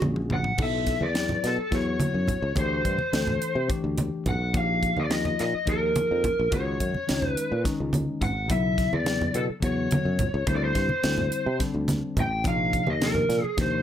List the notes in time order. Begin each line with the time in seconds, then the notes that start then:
Already playing: G#3 C#4 F#4 G#4
0.02 A#1, muted conga, high conga
0.16 mid tom
0.30 F#5, mid tom, low conga
0.44 floor tom
0.58 B1 F#3 B3 E4 A4, kick, crash, muted conga
0.63 E5
0.86 kick, snare, closed hi-hat
1.01 E2 D5, high conga
1.14 F#3 B3 E4 B4, snare, closed hi-hat
1.29 muted conga, low conga
1.44 B2 A4, snare, closed hi-hat
1.58 muted fretless electric bass stroke
1.71 E2 F#3 B3 E4 F#4 C#5, kick, snare, closed hi-hat
2.00 muted fretless electric bass stroke, closed hi-hat, muted conga, high conga
2.14 F#2
2.28 kick, closed hi-hat, low conga
2.42 C#2
2.55 D2 E3 A3 D4 G4, kick, closed hi-hat, muted conga
2.59 C5
2.85 G2, kick, closed hi-hat
2.98 muted fretless electric bass stroke, high conga
3.12 D2 E3 A3 D4 A4, snare, closed hi-hat
3.27 muted conga, low conga
3.42 closed hi-hat
3.55 C3
3.68 E3 A3 D4 G4, kick, closed hi-hat
3.84 D2
3.98 closed hi-hat, muted conga, high conga
4.26 B1 F#5, kick, closed hi-hat, low conga
4.53 A#1 F3 A#3 D#4 G4, kick, closed hi-hat, muted conga
4.57 F5
4.83 kick, closed hi-hat
4.97 D#2 D#5, high conga
5.04 D5
5.09 F3 A#3 D#4 F4 D#5, snare, closed hi-hat
5.25 muted conga, low conga
5.39 A#2 D#5, snare, closed hi-hat
5.55 muted fretless electric bass stroke
5.66 D#2 F3 A#3 D#4 G#4 A#4, kick, closed hi-hat
5.96 muted fretless electric bass stroke, closed hi-hat, muted conga, high conga
6.11 F2
6.24 kick, closed hi-hat, low conga
6.39 A#1
6.51 C#2 D#3 G#3 C#4 F#4 C#5, kick, closed hi-hat, muted conga, low conga
6.80 F#2, kick, closed hi-hat
6.95 muted fretless electric bass stroke, high conga
7.07 C#2 D#3 G#3 C#4 D#4, snare, closed hi-hat, low conga
7.22 muted conga, low conga
7.29 B4
7.37 closed hi-hat
7.52 A#2
7.64 D#3 G#3 C#4 D#4, muted fretless electric bass stroke, kick, snare, closed hi-hat
7.80 C#2
7.93 closed hi-hat, muted conga, high conga, low conga
8.21 G#1 F#5, kick, closed hi-hat, low conga
8.48 B1 C#3 F#3 B3 E4 E5, kick, closed hi-hat, muted conga
8.78 kick, snare, closed hi-hat
8.93 E2 D5, high conga
9.04 C#3 F#3 B3 E4, snare, closed hi-hat
9.21 muted conga, low conga
9.34 B2 A4, closed hi-hat
9.50 muted fretless electric bass stroke
9.61 E2 C#3 F#3 B3 F#4 C#5, kick, closed hi-hat
9.91 muted fretless electric bass stroke, closed hi-hat, muted conga, high conga
10.05 F#2
10.19 kick, closed hi-hat, low conga
10.34 C#2
10.47 D2 D3 G3 C4 E4 C5, kick, closed hi-hat, muted conga
10.56 D5
10.64 C5
10.75 G2, kick, snare, closed hi-hat
10.89 muted fretless electric bass stroke, high conga
11.03 D2 D3 G3 C4 E4, snare, closed hi-hat
11.18 muted conga, low conga
11.32 closed hi-hat
11.46 C3
11.59 D3 G3 C4 D4, muted fretless electric bass stroke, kick, snare, closed hi-hat
11.75 D2
11.88 snare, closed hi-hat, muted conga, high conga
12.17 A1 G5, kick, closed hi-hat, low conga
12.44 A#1 C3 F3 A#3 D#4 F5, kick, closed hi-hat, muted conga
12.73 kick, closed hi-hat
12.87 D#2 D#5, high conga
13.00 C3 F3 A#3 D4 A#4, snare, closed hi-hat
13.15 muted conga, low conga
13.29 A#2, snare, closed hi-hat
13.43 G#4, muted fretless electric bass stroke
13.57 D#2 C3 F3 A#3 D4 C5, kick, snare, closed hi-hat